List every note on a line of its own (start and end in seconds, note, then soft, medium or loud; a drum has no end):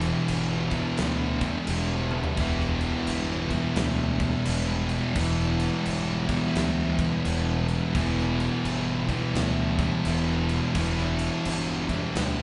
0.00 2.35 E2 medium
0.00 2.36 B2 medium
0.00 0.72 E3 loud
0.00 2.39 E3 loud
0.00 0.71 G3 loud
0.00 0.71 B3 loud
0.00 0.70 E4 loud
0.00 crash medium
0.28 0.80 G1 loud
0.28 crash medium
0.70 1.66 E3 medium
0.70 1.67 G3 medium
0.70 1.68 B3 medium
0.70 1.69 E4 medium
0.70 kick medium
0.70 crash medium
0.97 1.50 D2 loud
0.97 snare loud
0.97 crash medium
1.41 kick medium
1.41 crash medium
1.67 2.20 E1 loud
1.67 2.37 E3 medium
1.67 2.38 G3 loud
1.67 2.39 B3 loud
1.67 2.40 E4 medium
1.67 crash loud
2.11 high tom medium
2.24 floor tom loud
2.36 2.89 E1 loud
2.36 5.14 E2 medium
2.36 5.15 B2 medium
2.36 3.52 E3 medium
2.36 5.17 E3 medium
2.36 3.52 G3 loud
2.36 3.50 B3 medium
2.36 kick loud
2.36 crash medium
2.40 3.50 E4 medium
2.60 snare soft
2.80 crash medium
3.07 3.59 G1 medium
3.07 crash medium
3.50 4.45 E3 medium
3.50 4.46 G3 medium
3.50 4.47 B3 medium
3.50 4.48 E4 loud
3.50 kick medium
3.50 crash medium
3.76 4.28 D2 loud
3.76 snare loud
3.76 crash medium
4.20 kick loud
4.20 crash medium
4.45 4.98 E1 medium
4.45 5.14 E3 medium
4.45 5.15 G3 medium
4.45 5.16 B3 medium
4.45 5.17 E4 loud
4.45 crash loud
4.89 crash medium
5.14 5.68 E1 loud
5.14 7.92 E2 medium
5.14 7.94 B2 loud
5.14 6.29 E3 loud
5.14 7.96 E3 loud
5.14 6.29 G3 medium
5.14 6.28 B3 loud
5.14 6.27 E4 loud
5.14 kick loud
5.14 crash loud
5.39 snare soft
5.59 crash medium
5.85 6.38 G1 medium
5.85 crash loud
6.27 7.23 E3 medium
6.27 7.24 G3 medium
6.27 7.25 B3 medium
6.27 7.26 E4 medium
6.27 kick medium
6.27 crash medium
6.55 7.08 D2 medium
6.55 snare loud
6.55 crash medium
6.99 kick medium
6.99 crash medium
7.23 7.77 E1 medium
7.23 7.94 E3 medium
7.23 7.95 G3 loud
7.23 7.96 B3 loud
7.23 7.97 E4 loud
7.23 crash medium
7.68 crash medium
7.93 8.47 E1 medium
7.93 10.73 E2 medium
7.93 10.73 B2 medium
7.93 9.10 E3 loud
7.93 10.76 E3 loud
7.93 9.09 G3 loud
7.93 9.08 B3 loud
7.93 kick loud
7.93 crash medium
7.97 9.07 E4 loud
8.18 snare soft
8.40 crash medium
8.65 9.17 G1 medium
8.65 crash medium
9.08 10.04 E3 medium
9.08 10.05 G3 medium
9.08 10.06 B3 medium
9.08 10.07 E4 loud
9.08 kick medium
9.08 crash medium
9.35 9.87 D2 loud
9.35 snare loud
9.35 crash medium
9.79 kick medium
9.79 crash medium
10.05 10.58 E1 loud
10.05 10.75 E3 medium
10.05 10.76 G3 medium
10.05 10.78 B3 loud
10.05 10.78 E4 loud
10.05 crash medium
10.49 crash medium
10.73 11.27 E1 medium
10.73 12.42 E2 medium
10.73 12.42 B2 medium
10.73 11.87 E3 medium
10.73 12.42 E3 loud
10.73 11.87 G3 medium
10.73 kick loud
10.73 crash medium
10.78 11.88 B3 loud
10.78 11.88 E4 loud
10.99 snare soft
11.19 crash medium
11.45 11.98 G1 medium
11.45 crash loud
11.89 12.42 E3 medium
11.89 12.42 G3 medium
11.89 12.42 B3 medium
11.89 12.42 E4 medium
11.89 kick medium
11.89 crash medium
12.15 12.42 D2 loud
12.15 snare loud
12.15 crash loud